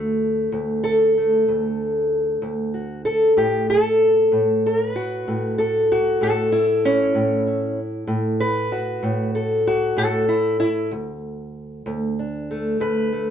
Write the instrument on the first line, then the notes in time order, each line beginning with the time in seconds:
steel-string acoustic guitar
Already playing: D2 A3
0.52 D2
0.84 A4
1.17 A3
1.48 D2
2.42 D2
2.74 F#4
3.05 A4
3.37 A2 G4
3.70 A4
4.32 A2
4.66 A#4
4.90 B4
4.96 F#4
5.28 A2
5.58 A4
5.92 F#4
6.21 A2 A4
6.52 E4
6.85 C#4
7.15 A2
7.47 E4
8.07 A2
8.40 B4
8.72 F#4
9.03 A2
9.35 A4
9.67 F#4
9.97 A2 A4
10.29 E4
10.60 E4
10.91 D2
11.86 D2
12.19 D4
12.51 A3
12.80 D2 B4
13.13 A3